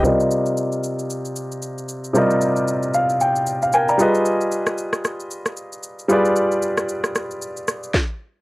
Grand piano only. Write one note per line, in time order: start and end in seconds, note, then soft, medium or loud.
0.00 2.10 C3 medium
0.00 2.11 G3 medium
0.00 0.19 G4 medium
0.05 2.11 F4 medium
0.05 2.12 A#4 medium
0.05 2.12 D5 medium
0.05 2.12 D#5 medium
2.13 3.43 C3 medium
2.13 3.44 G3 medium
2.13 3.44 F4 medium
2.13 3.44 A#4 medium
2.13 3.45 D5 medium
2.18 3.45 D#5 medium
2.94 3.19 F5 medium
3.21 3.45 G5 medium
3.63 3.73 F5 medium
3.74 3.88 A#4 medium
3.74 3.88 G5 medium
3.74 4.22 G#5 medium
3.89 4.14 D5 medium
3.89 4.14 A#5 medium
3.98 6.05 G3 medium
3.98 6.06 F4 medium
3.98 6.06 G#4 medium
3.98 6.07 B4 medium
4.02 6.07 D#5 medium
6.08 7.90 G3 medium
6.08 7.90 F4 medium
6.08 7.91 G#4 medium
6.08 7.91 B4 medium
6.13 7.92 D5 medium